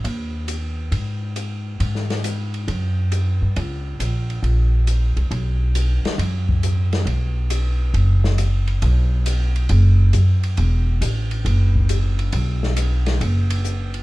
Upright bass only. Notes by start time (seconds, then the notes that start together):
0.04 D#2
0.92 G#2
1.80 G#2
2.68 F#2
3.42 G2
3.56 C#2
3.99 A#1
4.43 A#1
5.17 C2
5.31 B1
6.04 muted upright bass stroke
6.18 F#2
7.05 B1
7.94 F#1
8.82 B1
9.70 F#1
10.14 F#2
10.58 E1
11.01 A1
11.45 F#1
12.33 B1
13.21 F#1